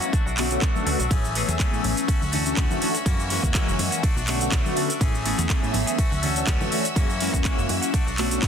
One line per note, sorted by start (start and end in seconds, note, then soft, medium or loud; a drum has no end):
0.00 0.12 E3 medium
0.00 0.12 G#3 medium
0.00 0.12 A#3 medium
0.00 0.12 C#4 medium
0.00 0.13 C#4 medium
0.00 0.12 F#4 medium
0.00 0.13 F#4 medium
0.00 1.10 E5 medium
0.00 1.10 E6 medium
0.00 closed hi-hat medium
0.00 tambourine soft
0.00 cabasa medium
0.04 0.12 A#3 medium
0.13 0.26 A3 medium
0.13 0.27 D4 medium
0.13 0.24 F#4 medium
0.13 kick loud
0.13 closed hi-hat medium
0.13 tambourine soft
0.13 cabasa medium
0.25 0.58 B1 medium
0.25 0.37 D4 medium
0.25 0.37 F#4 medium
0.25 high conga medium
0.25 cabasa soft
0.37 0.49 D3 medium
0.37 0.60 A3 medium
0.37 0.49 A3 medium
0.37 0.49 B3 medium
0.37 0.49 C#4 medium
0.37 0.61 D4 medium
0.37 0.49 F#4 medium
0.37 0.62 F#4 medium
0.37 clap medium
0.37 open hi-hat loud
0.37 tambourine medium
0.51 0.69 D3 medium
0.51 0.69 A3 medium
0.51 0.70 B3 medium
0.51 0.70 C#4 medium
0.51 0.70 F#4 loud
0.51 closed hi-hat soft
0.51 tambourine soft
0.51 cabasa medium
0.61 0.84 A3 medium
0.61 0.86 D4 loud
0.61 0.87 F#4 loud
0.61 kick loud
0.61 clap loud
0.61 closed hi-hat medium
0.61 cabasa medium
0.75 0.85 D3 medium
0.75 0.85 A3 medium
0.75 0.85 B3 medium
0.75 0.85 C#4 medium
0.75 0.85 F#4 loud
0.75 high conga loud
0.75 cabasa soft
0.85 0.97 D2 loud
0.85 0.99 D3 loud
0.85 0.99 A3 medium
0.85 0.99 B3 medium
0.85 0.99 C#4 medium
0.85 1.00 D4 medium
0.85 0.99 F#4 loud
0.85 0.97 F#4 medium
0.85 open hi-hat loud
0.85 tambourine medium
0.99 1.08 B1 medium
0.99 1.11 D4 medium
0.99 1.10 F#4 medium
0.99 closed hi-hat medium
0.99 tambourine medium
0.99 cabasa medium
1.10 1.44 A1 loud
1.10 1.33 E3 medium
1.10 1.23 E3 medium
1.10 1.24 A3 medium
1.10 1.34 A3 medium
1.10 1.24 B3 medium
1.10 1.24 C#4 medium
1.10 1.35 C#4 medium
1.10 1.24 G#4 medium
1.10 1.36 G#4 loud
1.10 8.48 E5 medium
1.10 8.48 E6 medium
1.10 kick loud
1.10 closed hi-hat medium
1.10 ride medium
1.10 tambourine soft
1.10 high conga loud
1.10 cabasa medium
1.25 cabasa soft
1.34 1.48 E3 medium
1.34 1.46 E3 medium
1.34 1.48 A3 medium
1.34 1.46 A3 medium
1.34 1.47 B3 medium
1.34 1.47 C#4 medium
1.34 1.48 C#4 medium
1.34 1.47 G#4 medium
1.34 1.46 G#4 medium
1.34 open hi-hat loud
1.34 tambourine medium
1.47 1.57 E2 loud
1.47 2.07 E3 medium
1.47 2.07 A3 medium
1.47 1.59 A3 medium
1.47 2.07 B3 medium
1.47 2.07 C#4 medium
1.47 1.59 C#4 medium
1.47 1.59 G#4 medium
1.47 2.08 G#4 medium
1.47 closed hi-hat medium
1.47 tambourine soft
1.47 high conga medium
1.47 cabasa medium
1.59 1.97 E3 medium
1.59 1.97 A3 medium
1.59 1.97 C#4 loud
1.59 1.95 G#4 loud
1.59 kick loud
1.59 clap loud
1.59 closed hi-hat medium
1.59 ride medium
1.59 cabasa medium
1.72 1.82 A2 medium
1.72 cabasa soft
1.84 1.94 A1 medium
1.84 open hi-hat medium
1.84 tambourine medium
1.84 high conga medium
1.96 2.06 A3 medium
1.96 2.08 C#4 medium
1.96 2.08 G#4 medium
1.96 closed hi-hat medium
1.96 tambourine medium
1.96 cabasa medium
2.08 2.19 D2 soft
2.08 2.21 A3 medium
2.08 2.22 C#4 loud
2.08 2.19 F#4 loud
2.08 kick loud
2.08 closed hi-hat medium
2.08 ride medium
2.08 cabasa medium
2.20 2.53 D2 medium
2.20 2.32 C#4 medium
2.20 2.32 F#4 medium
2.20 high conga medium
2.20 cabasa soft
2.32 2.44 E3 medium
2.32 2.55 A3 medium
2.32 2.44 A3 medium
2.32 2.44 C#4 medium
2.32 2.56 C#4 medium
2.32 2.44 D4 medium
2.32 2.44 F#4 medium
2.32 2.57 F#4 medium
2.32 open hi-hat loud
2.32 tambourine medium
2.32 low conga medium
2.46 2.64 E3 medium
2.46 2.64 A3 medium
2.46 2.64 C#4 medium
2.46 2.65 D4 medium
2.46 2.65 F#4 loud
2.46 closed hi-hat medium
2.46 tambourine medium
2.46 cabasa medium
2.56 2.67 D2 medium
2.56 2.79 A3 medium
2.56 2.81 C#4 loud
2.56 2.82 F#4 medium
2.56 kick loud
2.56 clap loud
2.56 closed hi-hat medium
2.56 ride medium
2.56 cabasa medium
2.70 2.80 E3 medium
2.70 2.80 A3 medium
2.70 2.80 C#4 medium
2.70 2.80 D4 medium
2.70 2.80 F#4 loud
2.70 high conga loud
2.70 low conga medium
2.70 cabasa soft
2.81 2.94 E3 loud
2.81 2.94 A3 medium
2.81 2.94 C#4 medium
2.81 2.95 C#4 medium
2.81 2.94 D4 medium
2.81 2.95 F#4 loud
2.81 2.93 F#4 medium
2.81 open hi-hat loud
2.81 tambourine medium
2.94 3.06 C#4 medium
2.94 3.06 F#4 medium
2.94 closed hi-hat medium
2.94 tambourine medium
2.94 cabasa medium
3.05 3.39 F#2 loud
3.05 3.28 E3 medium
3.05 3.18 E3 medium
3.05 3.19 G#3 medium
3.05 3.29 A#3 loud
3.05 3.19 A#3 medium
3.05 3.19 C#4 medium
3.05 3.30 C#4 medium
3.05 3.19 F#4 medium
3.05 3.31 F#4 loud
3.05 kick loud
3.05 closed hi-hat medium
3.05 ride medium
3.05 tambourine soft
3.05 high conga loud
3.05 cabasa medium
3.20 cabasa soft
3.29 3.43 E3 medium
3.29 3.41 E3 medium
3.29 3.41 G#3 medium
3.29 3.41 A#3 medium
3.29 3.43 A#3 medium
3.29 3.42 C#4 medium
3.29 3.43 C#4 medium
3.29 3.42 F#4 medium
3.29 3.41 F#4 medium
3.29 open hi-hat loud
3.29 tambourine medium
3.42 3.52 E2 loud
3.42 4.02 E3 medium
3.42 4.02 G#3 medium
3.42 4.02 A#3 medium
3.42 3.54 A#3 medium
3.42 4.02 C#4 medium
3.42 3.54 F#4 medium
3.42 4.03 F#4 medium
3.42 kick medium
3.42 closed hi-hat medium
3.42 tambourine medium
3.42 high conga medium
3.42 low conga medium
3.42 cabasa medium
3.54 3.92 E3 medium
3.54 3.92 A#3 medium
3.54 3.92 C#4 loud
3.54 3.90 F#4 loud
3.54 kick loud
3.54 clap loud
3.54 closed hi-hat medium
3.54 ride medium
3.54 cabasa medium
3.68 3.77 F#1 medium
3.68 cabasa soft
3.79 3.89 F#2 medium
3.79 open hi-hat medium
3.79 tambourine medium
3.79 high conga medium
3.91 4.02 A#3 medium
3.91 4.04 C#4 medium
3.91 4.03 F#4 medium
3.91 closed hi-hat medium
3.91 tambourine soft
3.91 cabasa medium
4.03 4.16 A3 medium
4.03 4.17 D4 medium
4.03 4.14 F#4 loud
4.03 kick loud
4.03 closed hi-hat medium
4.03 ride medium
4.03 tambourine soft
4.03 cabasa medium
4.16 4.48 B1 medium
4.16 4.28 D4 medium
4.16 4.27 F#4 medium
4.16 high conga medium
4.16 cabasa soft
4.27 4.39 D3 medium
4.27 4.50 A3 medium
4.27 4.39 A3 medium
4.27 4.39 B3 medium
4.27 4.39 C#4 medium
4.27 4.52 D4 medium
4.27 4.39 F#4 medium
4.27 4.52 F#4 medium
4.27 clap medium
4.27 open hi-hat loud
4.27 tambourine loud
4.40 4.59 D3 loud
4.40 4.59 A3 medium
4.40 4.60 B3 medium
4.40 4.60 C#4 medium
4.40 4.60 F#4 loud
4.40 closed hi-hat medium
4.40 tambourine medium
4.40 cabasa medium
4.51 4.62 B1 medium
4.51 4.74 A3 medium
4.51 4.76 D4 loud
4.51 4.77 F#4 loud
4.51 kick loud
4.51 clap loud
4.51 closed hi-hat medium
4.51 ride medium
4.51 cabasa medium
4.65 4.75 D3 medium
4.65 4.75 A3 medium
4.65 4.75 B3 medium
4.65 4.75 C#4 medium
4.65 4.75 F#4 loud
4.65 high conga medium
4.65 cabasa soft
4.76 4.89 D3 loud
4.76 4.89 A3 medium
4.76 4.89 B3 medium
4.76 4.89 C#4 medium
4.76 4.90 D4 medium
4.76 4.89 F#4 loud
4.76 4.88 F#4 medium
4.76 open hi-hat medium
4.76 tambourine medium
4.89 5.02 D4 medium
4.89 5.01 F#4 medium
4.89 closed hi-hat medium
4.89 tambourine medium
4.89 cabasa medium
5.00 5.34 A1 loud
5.00 5.23 E3 medium
5.00 5.13 E3 medium
5.00 5.14 A3 medium
5.00 5.25 A3 medium
5.00 5.14 B3 medium
5.00 5.14 C#4 medium
5.00 5.26 C#4 loud
5.00 5.14 G#4 medium
5.00 5.26 G#4 loud
5.00 kick loud
5.00 closed hi-hat medium
5.00 ride medium
5.00 tambourine soft
5.00 high conga loud
5.00 cabasa medium
5.15 cabasa soft
5.24 5.38 E3 medium
5.24 5.36 E3 medium
5.24 5.36 A3 medium
5.24 5.39 A3 medium
5.24 5.36 B3 medium
5.24 5.37 C#4 medium
5.24 5.38 C#4 medium
5.24 5.37 G#4 medium
5.24 5.36 G#4 medium
5.24 open hi-hat loud
5.24 tambourine loud
5.37 5.47 E2 loud
5.37 5.97 E3 medium
5.37 5.97 A3 medium
5.37 5.49 A3 medium
5.37 5.97 B3 medium
5.37 5.97 C#4 medium
5.37 5.49 G#4 medium
5.37 5.98 G#4 medium
5.37 closed hi-hat medium
5.37 tambourine medium
5.37 high conga medium
5.37 cabasa medium
5.49 5.87 E3 medium
5.49 5.87 A3 medium
5.49 5.87 C#4 medium
5.49 5.85 G#4 medium
5.49 kick loud
5.49 clap loud
5.49 closed hi-hat medium
5.49 ride medium
5.49 cabasa medium
5.63 5.72 A2 medium
5.63 cabasa soft
5.74 5.84 A1 medium
5.74 open hi-hat medium
5.74 tambourine medium
5.74 high conga medium
5.86 5.97 A3 soft
5.86 5.98 C#4 medium
5.86 5.98 G#4 medium
5.86 closed hi-hat medium
5.86 tambourine medium
5.86 cabasa medium
5.98 6.09 D2 soft
5.98 6.11 A3 medium
5.98 6.12 C#4 medium
5.98 6.09 F#4 loud
5.98 kick loud
5.98 closed hi-hat medium
5.98 ride medium
5.98 tambourine soft
5.98 cabasa medium
6.11 6.44 D2 medium
6.11 6.23 C#4 medium
6.11 6.23 F#4 medium
6.11 high conga medium
6.11 cabasa soft
6.22 6.34 E3 medium
6.22 6.45 A3 medium
6.22 6.34 A3 medium
6.22 6.34 C#4 medium
6.22 6.47 C#4 medium
6.22 6.34 D4 medium
6.22 6.34 F#4 medium
6.22 6.48 F#4 medium
6.22 open hi-hat loud
6.22 tambourine loud
6.22 low conga medium
6.35 6.54 E3 loud
6.35 6.55 A3 medium
6.35 6.55 C#4 medium
6.35 6.55 D4 medium
6.35 6.55 F#4 loud
6.35 closed hi-hat medium
6.35 tambourine medium
6.35 cabasa medium
6.47 6.58 D2 medium
6.47 6.70 A3 medium
6.47 6.71 C#4 loud
6.47 6.73 F#4 loud
6.47 kick loud
6.47 clap loud
6.47 closed hi-hat medium
6.47 ride medium
6.47 cabasa medium
6.60 6.70 E3 medium
6.60 6.70 A3 medium
6.60 6.70 C#4 medium
6.60 6.70 D4 medium
6.60 6.70 F#4 loud
6.60 high conga loud
6.60 low conga loud
6.60 cabasa soft
6.71 6.84 E3 loud
6.71 6.84 A3 medium
6.71 6.85 C#4 medium
6.71 6.85 D4 medium
6.71 6.85 F#4 loud
6.71 6.83 F#4 medium
6.71 open hi-hat medium
6.71 tambourine loud
6.84 6.96 C#4 medium
6.84 6.96 F#4 medium
6.84 closed hi-hat medium
6.84 tambourine medium
6.84 cabasa medium
6.95 7.29 F#2 loud
6.95 7.18 E3 medium
6.95 7.09 E3 medium
6.95 7.09 G#3 medium
6.95 7.20 A#3 loud
6.95 7.09 A#3 medium
6.95 7.09 C#4 medium
6.95 7.21 C#4 loud
6.95 7.09 F#4 medium
6.95 7.21 F#4 loud
6.95 kick loud
6.95 closed hi-hat medium
6.95 ride medium
6.95 tambourine soft
6.95 high conga medium
6.95 cabasa medium
7.10 cabasa soft
7.20 7.33 E3 medium
7.20 7.32 E3 medium
7.20 7.32 G#3 medium
7.20 7.34 A#3 medium
7.20 7.32 A#3 medium
7.20 7.32 C#4 medium
7.20 7.33 C#4 medium
7.20 7.32 F#4 medium
7.20 7.31 F#4 medium
7.20 open hi-hat loud
7.20 tambourine loud
7.33 7.43 E2 loud
7.33 7.92 E3 medium
7.33 7.92 G#3 medium
7.33 7.93 A#3 medium
7.33 7.44 A#3 medium
7.33 7.93 C#4 medium
7.33 7.45 C#4 medium
7.33 7.45 F#4 medium
7.33 7.93 F#4 medium
7.33 kick medium
7.33 closed hi-hat medium
7.33 tambourine medium
7.33 high conga medium
7.33 low conga medium
7.33 cabasa medium
7.44 7.82 E3 medium
7.44 7.83 A#3 medium
7.44 7.82 C#4 medium
7.44 7.80 F#4 loud
7.44 kick loud
7.44 clap loud
7.44 closed hi-hat medium
7.44 ride medium
7.44 tambourine soft
7.44 cabasa medium
7.58 7.67 F#1 medium
7.58 cabasa soft
7.69 7.80 F#2 medium
7.69 open hi-hat medium
7.69 tambourine medium
7.69 high conga medium
7.81 7.93 A#3 medium
7.81 7.94 C#4 medium
7.81 7.93 F#4 medium
7.81 closed hi-hat medium
7.81 tambourine medium
7.81 cabasa medium
7.93 8.06 A3 medium
7.93 8.07 D4 loud
7.93 8.05 F#4 loud
7.93 kick loud
7.93 closed hi-hat medium
7.93 ride medium
7.93 cabasa medium
8.06 8.39 B1 medium
8.06 8.18 D4 soft
8.06 8.18 F#4 medium
8.06 high conga medium
8.06 cabasa soft
8.17 8.29 D3 medium
8.17 8.41 A3 medium
8.17 8.29 A3 medium
8.17 8.29 B3 medium
8.17 8.29 C#4 medium
8.17 8.42 D4 medium
8.17 8.29 F#4 medium
8.17 8.43 F#4 medium
8.17 clap medium
8.17 open hi-hat loud
8.17 tambourine loud
8.31 8.48 D3 medium
8.31 8.48 A3 medium
8.31 8.48 B3 medium
8.31 8.48 C#4 medium
8.31 8.48 F#4 loud
8.31 closed hi-hat medium
8.31 tambourine medium
8.31 cabasa medium
8.42 8.48 B1 medium
8.42 8.48 A3 medium
8.42 8.48 F#4 loud
8.42 kick loud
8.42 snare medium
8.42 clap loud
8.42 closed hi-hat medium
8.42 ride medium
8.42 cabasa medium